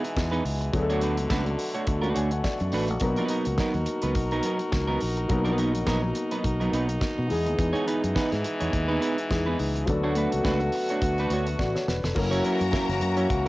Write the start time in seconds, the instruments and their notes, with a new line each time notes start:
Already playing: french horn section B2 E3 G#3 D#4, grand piano E3 G#3 B3 D#4 G#4
0.04 muted clean electric guitar stroke, closed hi-hat
0.16 fingered electric bass E2, muted clean electric guitar stroke, kick, snare
0.31 clean electric guitar B3 D#4 G#4 B4, closed hi-hat
0.44 fingered electric bass C#2, muted clean electric guitar stroke, open hi-hat
0.61 muted clean electric guitar stroke, closed hi-hat
0.73 fingered electric bass D2, french horn section D3 A3 F#4, grand piano F#3 A3 B3 D4 G#4, muted clean electric guitar stroke, kick, closed hi-hat
0.82 grand piano A4
0.90 clean electric guitar A3 D4 F#4 C#5, closed hi-hat
1.01 clean electric guitar A3 D4 F#4 B4, closed hi-hat
1.17 fingered electric bass C#2, muted clean electric guitar stroke, closed hi-hat
1.30 fingered electric bass C#2, clean electric guitar A3 D4 F#4 B4, kick, snare
1.46 muted clean electric guitar stroke, closed hi-hat
1.58 muted clean electric guitar stroke, open hi-hat
1.75 clean electric guitar A3 D4 F#4 C#5, closed hi-hat
1.87 fingered electric bass D2, muted clean electric guitar stroke, kick, closed hi-hat
2.02 clean electric guitar A3 D4 F#4 B4, closed hi-hat
2.14 fingered electric bass D2, clean electric guitar A3 D4 F#4 C#5, grand piano G#5, closed hi-hat
2.31 grand piano F#5, muted clean electric guitar stroke, closed hi-hat
2.44 grand piano D5, muted clean electric guitar stroke, kick, snare
2.60 fingered electric bass F#2, muted clean electric guitar stroke, closed hi-hat
2.72 fingered electric bass A1, clean electric guitar A3 D4 F#4 B4, open hi-hat
2.88 fingered electric bass A#1, muted clean electric guitar stroke, closed hi-hat
3.00 fingered electric bass B1, grand piano F#3 A#3 B3 D4 A#4, french horn section D#4 A#4, muted clean electric guitar stroke, kick, closed hi-hat
3.09 grand piano D#4
3.17 clean electric guitar F#3 B3 D#4 B4, closed hi-hat
3.29 clean electric guitar F#3 B3 D#4 A#4, closed hi-hat
3.45 fingered electric bass C#2, closed hi-hat
3.58 clean electric guitar F#3 B3 D#4 A#4, kick, snare
3.74 fingered electric bass D#2, muted clean electric guitar stroke, closed hi-hat
3.86 muted clean electric guitar stroke, closed hi-hat
4.02 fingered electric bass C#2, clean electric guitar F#3 B3 D#4 B4, closed hi-hat
4.15 fingered electric bass B1, muted clean electric guitar stroke, kick, closed hi-hat
4.31 clean electric guitar F#3 B3 D#4 A#4, closed hi-hat
4.43 clean electric guitar F#3 B3 D#4 A#4, closed hi-hat
4.59 muted clean electric guitar stroke, closed hi-hat
4.72 fingered electric bass C#2, muted clean electric guitar stroke, kick, snare
4.87 clean electric guitar F#3 B3 D#4 A#4
5.00 fingered electric bass A#1, muted clean electric guitar stroke, open hi-hat
5.17 muted clean electric guitar stroke, closed hi-hat
5.28 fingered electric bass B1, grand piano F#3 A#3 B3 D#4 A#4, muted clean electric guitar stroke, kick, closed hi-hat
5.45 clean electric guitar F#3 B3 D#4 B4, closed hi-hat
5.58 clean electric guitar F#3 B3 D#4 A#4, closed hi-hat
5.73 fingered electric bass A#1, muted clean electric guitar stroke, closed hi-hat
5.86 fingered electric bass A#1, clean electric guitar F#3 B3 D#4 A#4, kick, snare
6.03 muted clean electric guitar stroke
6.15 muted clean electric guitar stroke, closed hi-hat
6.31 clean electric guitar F#3 B3 D#4 B4, closed hi-hat
6.44 fingered electric bass B1, muted clean electric guitar stroke, kick, closed hi-hat
6.60 clean electric guitar F#3 B3 D#4 A#4, closed hi-hat
6.73 fingered electric bass B1, clean electric guitar F#3 B3 D#4 B4, closed hi-hat
6.88 muted clean electric guitar stroke, closed hi-hat
7.00 muted clean electric guitar stroke, kick, snare
7.18 fingered electric bass B2, muted clean electric guitar stroke
7.27 grand piano E3 G#3 B3 D#4 G#4, french horn section E3 G#3, open hi-hat
7.32 fingered electric bass E2
7.46 fingered electric bass D#2, muted clean electric guitar stroke, closed hi-hat
7.58 fingered electric bass E2, muted clean electric guitar stroke, kick, closed hi-hat
7.73 clean electric guitar B3 D#4 G#4 C#5, closed hi-hat
7.87 clean electric guitar B3 D#4 G#4 B4, closed hi-hat
8.03 fingered electric bass F#2, muted clean electric guitar stroke, closed hi-hat
8.15 clean electric guitar B3 D#4 G#4 B4, kick, snare
8.32 fingered electric bass G#2, muted clean electric guitar stroke, snare, closed hi-hat
8.44 muted clean electric guitar stroke, closed hi-hat
8.60 fingered electric bass E2, clean electric guitar B3 D#4 G#4 C#5, closed hi-hat
8.73 fingered electric bass D#2, muted clean electric guitar stroke, kick, closed hi-hat
8.88 clean electric guitar B3 D#4 G#4 B4
9.00 clean electric guitar B3 D#4 G#4 B4, closed hi-hat
9.18 muted clean electric guitar stroke, closed hi-hat
9.29 fingered electric bass E2, grand piano E3 G#3 B3 D#4 G#4, muted clean electric guitar stroke, kick, snare
9.46 clean electric guitar B3 D#4 G#4 B4
9.59 fingered electric bass C#2, muted clean electric guitar stroke, open hi-hat
9.75 muted clean electric guitar stroke, closed hi-hat
9.86 fingered electric bass D2, french horn section D3 A3 B3 F#4, grand piano F#3 A3 B3 D4 A4, muted clean electric guitar stroke, kick, closed hi-hat
10.03 clean electric guitar A3 D4 F#4 C#5
10.15 clean electric guitar A3 D4 F#4 B4, closed hi-hat
10.32 fingered electric bass C#2, muted clean electric guitar stroke, closed hi-hat
10.44 fingered electric bass C#2, clean electric guitar A3 D4 F#4 B4, kick, snare
10.60 muted clean electric guitar stroke, closed hi-hat
10.72 muted clean electric guitar stroke, open hi-hat
10.89 clean electric guitar A3 D4 F#4 C#5, closed hi-hat
11.02 fingered electric bass D2, muted clean electric guitar stroke, kick, closed hi-hat
11.18 clean electric guitar A3 D4 F#4 B4, closed hi-hat
11.30 fingered electric bass D2, clean electric guitar A3 D4 F#4 C#5, closed hi-hat
11.47 muted clean electric guitar stroke, closed hi-hat
11.59 fingered electric bass A1, grand piano D5, muted clean electric guitar stroke, kick, snare
11.75 grand piano C#5, muted clean electric guitar stroke, snare
11.88 fingered electric bass E1, grand piano B4, snare
12.04 fingered electric bass F1, grand piano A4, muted clean electric guitar stroke, snare
12.15 fingered electric bass F#1, french horn section E3 A#3 C#4 F#4, grand piano F#3 A#3 C#4 E4 A#4, string section A#4 A#5, muted clean electric guitar stroke, kick, crash
12.31 clean electric guitar F#3 C#4 E4 C#5, closed hi-hat
12.45 clean electric guitar F#3 C#4 E4 A#4, closed hi-hat
12.61 fingered electric bass F#2, muted clean electric guitar stroke, closed hi-hat
12.72 clean electric guitar F#3 C#4 E4 A#4, kick, snare
12.89 fingered electric bass F#1, muted clean electric guitar stroke, snare, closed hi-hat
13.01 fingered electric bass F#2, muted clean electric guitar stroke, closed hi-hat
13.17 clean electric guitar F#3 C#4 E4 C#5, closed hi-hat
13.30 fingered electric bass C#2, muted clean electric guitar stroke, kick, closed hi-hat